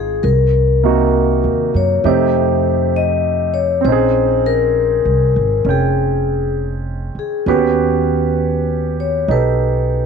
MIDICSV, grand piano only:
0, 0, Header, 1, 2, 480
1, 0, Start_track
1, 0, Tempo, 904977
1, 124, Time_signature, 4, 2, 24, 8
1, 5335, End_track
2, 0, Start_track
2, 0, Title_t, "Grand piano"
2, 0, Program_c, 0, 0
2, 0, Control_c, 0, 64, 127
2, 0, Note_on_c, 0, 56, 44
2, 0, Note_on_c, 0, 60, 39
2, 0, Note_on_c, 0, 63, 35
2, 0, Note_on_c, 0, 65, 36
2, 0, Note_on_c, 0, 68, 42
2, 0, Note_on_c, 0, 79, 46
2, 117, Note_off_c, 0, 56, 0
2, 126, Note_off_c, 0, 60, 0
2, 130, Note_off_c, 0, 63, 0
2, 131, Control_c, 0, 64, 0
2, 133, Note_off_c, 0, 65, 0
2, 136, Note_off_c, 0, 68, 0
2, 147, Note_off_c, 0, 79, 0
2, 236, Control_c, 0, 64, 127
2, 443, Note_on_c, 0, 58, 45
2, 449, Note_on_c, 0, 48, 43
2, 452, Note_on_c, 0, 63, 41
2, 453, Note_on_c, 0, 66, 46
2, 1079, Note_off_c, 0, 48, 0
2, 1082, Note_off_c, 0, 63, 0
2, 1085, Note_off_c, 0, 58, 0
2, 1086, Note_on_c, 0, 57, 51
2, 1087, Note_on_c, 0, 48, 45
2, 1090, Note_off_c, 0, 66, 0
2, 1090, Note_on_c, 0, 63, 46
2, 1090, Note_on_c, 0, 67, 53
2, 1091, Control_c, 0, 64, 0
2, 1191, Control_c, 0, 64, 127
2, 2020, Note_on_c, 0, 60, 47
2, 2041, Note_on_c, 0, 61, 45
2, 2043, Note_off_c, 0, 57, 0
2, 2044, Note_off_c, 0, 48, 0
2, 2045, Note_off_c, 0, 63, 0
2, 2045, Note_off_c, 0, 67, 0
2, 2050, Control_c, 0, 64, 0
2, 2058, Note_on_c, 0, 63, 45
2, 2080, Note_on_c, 0, 68, 54
2, 2151, Control_c, 0, 64, 127
2, 2994, Note_off_c, 0, 61, 0
2, 3002, Note_on_c, 0, 61, 35
2, 3017, Note_on_c, 0, 79, 38
2, 3947, Note_off_c, 0, 60, 0
2, 3957, Note_off_c, 0, 61, 0
2, 3964, Control_c, 0, 64, 0
2, 3965, Note_on_c, 0, 61, 42
2, 3966, Note_off_c, 0, 63, 0
2, 3966, Note_off_c, 0, 79, 0
2, 3967, Note_on_c, 0, 59, 46
2, 3972, Note_on_c, 0, 67, 53
2, 3973, Note_on_c, 0, 66, 41
2, 3976, Note_off_c, 0, 68, 0
2, 4054, Control_c, 0, 64, 127
2, 4924, Note_on_c, 0, 63, 37
2, 4925, Note_off_c, 0, 67, 0
2, 4933, Note_on_c, 0, 67, 34
2, 4940, Note_on_c, 0, 69, 39
2, 5335, Note_off_c, 0, 59, 0
2, 5335, Note_off_c, 0, 61, 0
2, 5335, Note_off_c, 0, 63, 0
2, 5335, Note_off_c, 0, 66, 0
2, 5335, Note_off_c, 0, 67, 0
2, 5335, Note_off_c, 0, 69, 0
2, 5335, End_track
0, 0, End_of_file